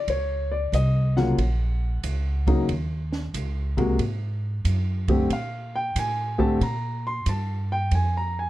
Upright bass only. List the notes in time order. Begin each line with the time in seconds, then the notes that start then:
0.08 C#2
0.72 C2
1.38 A#1
2.04 C#2
2.68 D#2
3.34 C#2
3.99 G#2
4.65 F#2
5.30 A#2
5.96 A2
6.61 A#2
7.26 G2
7.91 F2